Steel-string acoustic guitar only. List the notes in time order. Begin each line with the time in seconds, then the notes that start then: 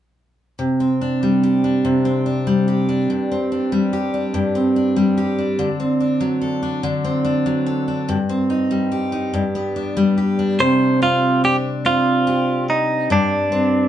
0.59 C3
0.80 C4
1.01 D4
1.23 G3
1.43 G4
1.64 D4
1.85 C3
2.05 C4
2.26 D4
2.47 G3
2.68 G4
2.89 D4
3.10 G2
3.32 C4
3.52 D4
3.72 G3
3.93 G4
4.14 D4
4.34 G2
4.55 C4
4.76 D4
4.96 G3
5.18 G4
5.38 D4
5.59 D3
5.80 C4
6.00 D4
6.21 F#3
6.41 A4
6.63 D4
6.83 D3
7.04 C4
7.25 D4
7.46 F#3
7.66 A4
7.88 D4
8.09 G2
8.29 C4
8.50 D#4
8.71 G3
8.92 G4
9.12 D#4
9.34 G2
9.55 B3
9.76 D4
9.97 G3
10.18 G4
10.39 D4
10.60 C3
11.02 C4
11.44 D4
11.85 C4
12.27 G4
13.10 G2
13.52 C4